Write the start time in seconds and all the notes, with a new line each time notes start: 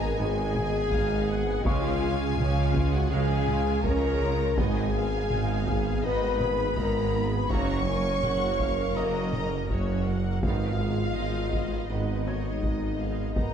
Already playing: G#1 D#3 B3 G#4 D#5 G#5
0.00 A#4 A#5
0.18 G#1 G#2 D#3 G#3 B3 D#4 G#4 G#5
0.55 B3 G#4, taiko mid
0.91 G#1 G#2 G#3 D#4 F5, taiko
1.29 B3 G#4 F#5
1.64 C#2 C#3 F3 G#3 C#4 F4 C#5 F5 G#5 C#6, taiko
2.01 G#3 F4
2.37 C#2 C#3 F3 C#4 F4 F5, taiko mid
2.75 G#3 F4, taiko
2.93 F#4 F#5
3.10 C#2 C#3 F3 G#3 C#4 G#4 F5 G#5
3.48 G#3 F4, taiko mid
3.83 C#2 C#3 F3 C#4 A#4 C#5 A#5, taiko
4.22 G#3 F4
4.57 G#1 G#2 D#3 G#3 B3 D#4 G#4 D#5 G#5, taiko
4.95 B3 G#4 F5
5.30 G#1 G#2 G#3 D#4, taiko mid
5.67 B3 G#4, taiko
6.03 G#1 G#2 D#3 G#3 B3 D#4 B4 D#5 B5
6.40 B3 G#4 B5, taiko mid
6.76 G#1 G#2 G#3 D#4 A#4 A#5, taiko
7.14 B3 G#4
7.32 B4 B5
7.48 F#1 F#2 F#3 A#3 C#4 F#4 A#4 C#5 A#5 C#6, taiko
7.87 A#3 A#4 G#5
8.23 F#1 F#2 C#4 F#4 F#5, taiko mid
8.60 A#3 A#4 F5, taiko
8.96 F#1 F#2 F#3 A#3 C#4 F#4 A#4 D#5 A#5 D#6
9.32 A#3 A#4 A#5, taiko mid
9.70 F#1 F#2 C#4 F#4 C#5, taiko
10.07 A#3 A#4 F#5
10.40 G#1 G#2 G#3 B3 D#4 F4 D#5 F5, taiko
10.44 D#3 B3 F5
10.79 B3 G#4
11.16 G#1 G#2 G#3 D#4 D#5
11.53 B3 G#4, taiko
11.89 G#1 G#2 D#3 G#3 B3 D#4 B4 D#5
12.26 B3 F#4 G#4 C#5 G#6
12.62 G#1 G#2 G#3 D#4 D#5, taiko
12.99 B3 G#4 F5
13.35 G#1 G#2 D#3 G#3 B3 D#4 A#4 D#5 A#5, taiko